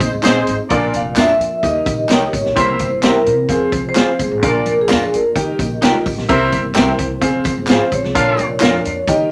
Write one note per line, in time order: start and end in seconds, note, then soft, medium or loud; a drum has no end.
0.00 0.09 A#1 loud
0.00 0.68 G#3 medium
0.00 0.11 G#3 medium
0.00 0.68 C4 medium
0.00 0.11 C4 medium
0.00 0.68 D#4 medium
0.00 0.11 D#4 medium
0.00 0.11 C5 medium
0.00 0.44 D#5 medium
0.00 kick loud
0.00 closed hi-hat medium
0.00 tambourine medium
0.00 muted conga soft
0.00 low conga medium
0.14 0.22 G#1 medium
0.23 0.41 A#1 medium
0.23 0.57 G#3 loud
0.23 0.57 C4 loud
0.23 0.52 C4 medium
0.23 0.36 D#4 medium
0.23 0.57 D#4 medium
0.23 0.52 D#4 medium
0.23 0.36 G#4 medium
0.23 0.52 G#4 medium
0.23 0.57 C5 loud
0.23 0.37 C5 medium
0.23 0.52 D#5 medium
0.23 0.37 D#5 medium
0.23 snare loud
0.23 clap medium
0.23 closed hi-hat loud
0.23 tambourine medium
0.23 high conga medium
0.34 high conga medium
0.47 0.56 G#1 medium
0.47 closed hi-hat medium
0.47 tambourine medium
0.58 high conga soft
0.69 0.88 A#1 loud
0.69 1.37 A#2 medium
0.69 1.63 F3 medium
0.69 1.03 A#3 medium
0.69 1.62 A#3 medium
0.69 0.99 A#3 loud
0.69 1.03 D4 medium
0.69 1.63 D4 medium
0.69 0.99 D4 loud
0.69 1.03 F4 medium
0.69 0.99 F4 loud
0.69 1.03 D5 loud
0.69 0.99 D5 loud
0.69 kick loud
0.69 closed hi-hat medium
0.69 tambourine soft
0.69 muted conga soft
0.93 1.11 F1 medium
0.93 1.19 F5 medium
0.93 closed hi-hat medium
0.93 tambourine medium
0.93 muted conga soft
1.16 1.33 F2 medium
1.16 1.46 A#3 medium
1.16 1.29 D4 medium
1.16 1.46 D4 medium
1.16 1.29 F4 medium
1.16 1.46 F4 medium
1.16 1.30 A#4 medium
1.16 1.30 D5 medium
1.16 1.46 D5 medium
1.16 1.61 E5 loud
1.16 snare loud
1.16 clap loud
1.16 closed hi-hat medium
1.16 tambourine loud
1.16 high conga medium
1.39 1.57 F2 medium
1.39 closed hi-hat medium
1.39 tambourine soft
1.63 1.80 D#2 loud
1.63 2.30 D#3 medium
1.63 2.56 G3 medium
1.63 3.48 A#3 medium
1.63 1.92 A#3 medium
1.63 1.92 D#4 medium
1.63 2.56 D#4 medium
1.63 1.92 G4 medium
1.63 1.92 D#5 medium
1.63 2.13 D#5 medium
1.63 kick medium
1.63 closed hi-hat medium
1.63 tambourine medium
1.63 muted conga soft
1.86 2.03 A#1 medium
1.86 kick loud
1.86 closed hi-hat medium
1.86 tambourine medium
1.86 muted conga soft
1.86 low conga medium
2.09 2.19 C2 medium
2.09 2.38 A#3 medium
2.09 2.22 D#4 medium
2.09 2.38 D#4 medium
2.09 2.38 G4 medium
2.09 2.22 G4 medium
2.09 2.23 A#4 medium
2.09 2.60 C#5 loud
2.09 2.38 D#5 medium
2.09 2.23 D#5 medium
2.09 snare loud
2.09 clap medium
2.09 closed hi-hat medium
2.09 tambourine medium
2.09 high conga medium
2.22 high conga medium
2.33 2.42 G#1 loud
2.33 kick medium
2.33 closed hi-hat medium
2.33 tambourine medium
2.46 2.54 A#1 medium
2.46 snare soft
2.55 2.80 C2 medium
2.55 3.22 C3 medium
2.55 3.49 E3 medium
2.55 2.85 A#3 loud
2.55 4.41 C4 medium
2.55 2.90 C4 medium
2.55 2.90 E4 medium
2.55 2.85 E4 medium
2.55 2.84 G4 medium
2.55 2.90 A#4 medium
2.55 2.84 C5 loud
2.55 3.01 C5 medium
2.55 2.90 E5 loud
2.55 kick loud
2.55 closed hi-hat loud
2.55 tambourine soft
2.79 2.97 G1 medium
2.79 kick medium
2.79 closed hi-hat medium
2.79 tambourine medium
2.79 muted conga soft
3.02 3.29 G1 medium
3.02 3.31 A#3 medium
3.02 3.15 C4 medium
3.02 3.31 E4 medium
3.02 3.16 G4 medium
3.02 3.31 G4 medium
3.02 3.16 A#4 medium
3.02 3.31 C5 medium
3.02 3.16 E5 medium
3.02 snare loud
3.02 clap loud
3.02 closed hi-hat medium
3.02 tambourine loud
3.02 high conga medium
3.07 3.53 A#4 loud
3.26 3.44 C3 medium
3.26 closed hi-hat medium
3.48 3.66 F2 medium
3.48 5.34 F3 medium
3.48 4.42 G#3 medium
3.48 3.78 C4 medium
3.48 3.78 F4 medium
3.48 3.78 G#4 medium
3.48 3.78 F5 medium
3.48 kick medium
3.48 closed hi-hat medium
3.48 tambourine medium
3.48 muted conga soft
3.53 3.88 G#4 medium
3.72 3.90 C2 medium
3.72 kick loud
3.72 closed hi-hat medium
3.72 tambourine medium
3.72 muted conga soft
3.72 low conga medium
3.89 4.23 C5 medium
3.95 4.05 D2 medium
3.95 4.24 C4 medium
3.95 4.08 F4 medium
3.95 4.24 F4 medium
3.95 4.24 G#4 medium
3.95 4.08 G#4 medium
3.95 4.09 C5 medium
3.95 4.24 F5 medium
3.95 4.09 F5 medium
3.95 snare loud
3.95 clap loud
3.95 closed hi-hat medium
3.95 tambourine medium
3.95 high conga medium
4.07 high conga medium
4.19 4.28 G1 medium
4.19 4.43 G#4 medium
4.19 kick medium
4.19 closed hi-hat medium
4.19 tambourine medium
4.31 4.43 G#1 medium
4.41 4.60 A#1 loud
4.41 5.09 A#2 medium
4.41 7.20 A#3 medium
4.41 4.77 A#3 medium
4.41 4.71 D4 loud
4.41 4.76 D4 medium
4.41 5.35 D4 medium
4.41 4.71 F4 medium
4.41 4.77 F4 medium
4.41 4.71 A#4 medium
4.41 4.76 D5 loud
4.41 4.71 F5 loud
4.41 kick loud
4.41 closed hi-hat medium
4.41 muted conga soft
4.46 4.77 A#4 medium
4.66 4.92 F1 medium
4.66 closed hi-hat medium
4.66 tambourine medium
4.66 muted conga medium
4.81 5.16 G#4 medium
4.87 5.07 F2 medium
4.87 5.17 D4 medium
4.87 5.17 F4 medium
4.87 5.01 F4 medium
4.87 5.17 A#4 medium
4.87 5.02 A#4 medium
4.87 5.02 D5 medium
4.87 5.17 F5 medium
4.87 5.02 F5 medium
4.87 snare loud
4.87 clap loud
4.87 closed hi-hat medium
4.87 tambourine loud
4.87 high conga medium
5.13 5.30 F2 medium
5.13 5.38 A#4 medium
5.13 closed hi-hat medium
5.13 tambourine soft
5.36 6.02 D#3 medium
5.36 5.53 D#3 loud
5.36 6.29 G3 medium
5.36 5.64 D#4 medium
5.36 6.29 D#4 medium
5.36 5.64 G4 medium
5.36 5.86 G4 medium
5.36 5.64 A#4 medium
5.36 5.64 G5 medium
5.36 kick medium
5.36 closed hi-hat medium
5.36 tambourine medium
5.36 muted conga soft
5.59 5.76 A#1 medium
5.59 kick medium
5.59 closed hi-hat medium
5.59 tambourine soft
5.59 muted conga soft
5.59 low conga medium
5.82 5.92 C2 medium
5.82 5.94 D#4 medium
5.82 6.10 D#4 medium
5.82 6.05 F4 medium
5.82 5.95 G4 medium
5.82 6.11 G4 medium
5.82 6.11 A#4 medium
5.82 5.95 A#4 medium
5.82 5.95 D#5 medium
5.82 6.11 G5 medium
5.82 snare loud
5.82 clap medium
5.82 closed hi-hat medium
5.82 tambourine medium
5.82 high conga medium
5.94 high conga medium
6.06 6.14 G#1 medium
6.06 kick medium
6.06 open hi-hat medium
6.06 tambourine medium
6.18 6.26 A#1 medium
6.18 snare soft
6.29 6.46 C2 medium
6.29 6.95 C3 medium
6.29 7.22 E3 medium
6.29 8.13 C4 medium
6.29 6.57 C4 loud
6.29 6.63 C4 medium
6.29 6.63 E4 medium
6.29 6.57 G4 loud
6.29 6.62 A#4 loud
6.29 6.57 A#4 loud
6.29 6.57 E5 loud
6.29 6.63 E5 medium
6.29 kick loud
6.29 closed hi-hat loud
6.29 tambourine soft
6.52 6.78 G1 medium
6.52 kick medium
6.52 closed hi-hat medium
6.52 tambourine medium
6.52 muted conga soft
6.74 6.93 C2 medium
6.74 7.03 C4 medium
6.74 6.88 C4 medium
6.74 7.04 G4 medium
6.74 6.88 G4 medium
6.74 7.03 A#4 medium
6.74 6.89 A#4 medium
6.74 6.89 E5 medium
6.74 7.03 G5 loud
6.74 snare loud
6.74 clap loud
6.74 closed hi-hat medium
6.74 tambourine loud
6.74 high conga medium
6.99 7.16 C2 medium
6.99 kick medium
6.99 closed hi-hat medium
7.21 7.39 F1 medium
7.21 9.06 F3 medium
7.21 8.14 G#3 medium
7.21 7.50 C4 medium
7.21 7.50 F4 medium
7.21 7.50 G#4 medium
7.21 7.50 F5 medium
7.21 kick medium
7.21 closed hi-hat medium
7.21 tambourine medium
7.21 muted conga soft
7.44 kick loud
7.44 closed hi-hat medium
7.44 tambourine medium
7.44 muted conga soft
7.44 low conga medium
7.58 7.66 G1 medium
7.67 7.77 G#1 medium
7.67 7.97 C4 medium
7.67 7.81 F4 medium
7.67 7.97 F4 medium
7.67 7.97 G#4 medium
7.67 7.81 G#4 medium
7.67 7.82 C5 medium
7.67 7.97 F5 medium
7.67 7.82 F5 medium
7.67 snare loud
7.67 clap medium
7.67 closed hi-hat medium
7.67 tambourine medium
7.67 high conga medium
7.71 7.92 C5 medium
7.81 high conga medium
7.92 8.01 A#1 medium
7.92 9.13 C#5 medium
7.92 kick medium
7.92 closed hi-hat medium
7.92 tambourine medium
8.04 8.16 C2 medium
8.04 snare soft
8.04 high conga soft
8.15 8.32 A#1 loud
8.15 8.81 A#2 medium
8.15 9.31 A#3 medium
8.15 8.43 D4 medium
8.15 8.49 D4 loud
8.15 8.43 F4 medium
8.15 8.49 F4 medium
8.15 8.43 A#4 medium
8.15 8.49 A#4 medium
8.15 8.43 F5 loud
8.15 8.49 F5 loud
8.15 kick loud
8.15 closed hi-hat loud
8.15 tambourine soft
8.37 8.64 F1 medium
8.37 closed hi-hat medium
8.37 tambourine soft
8.37 muted conga soft
8.60 8.79 F2 medium
8.60 8.89 D4 medium
8.60 8.73 F4 medium
8.60 8.89 F4 medium
8.60 8.89 A#4 medium
8.60 8.74 A#4 medium
8.60 8.74 D5 medium
8.60 8.90 F5 loud
8.60 8.74 F5 medium
8.60 snare loud
8.60 clap loud
8.60 closed hi-hat medium
8.60 tambourine loud
8.60 high conga medium
8.85 9.03 F2 medium
8.85 closed hi-hat medium
8.85 tambourine soft
9.07 9.25 D#3 loud
9.07 9.31 D#3 medium
9.07 9.31 G3 medium
9.07 9.31 D#4 medium
9.07 9.31 G4 medium
9.07 9.31 A#4 medium
9.07 9.31 D#5 loud
9.07 9.31 G5 medium
9.07 kick medium
9.07 closed hi-hat medium
9.07 tambourine medium
9.07 muted conga soft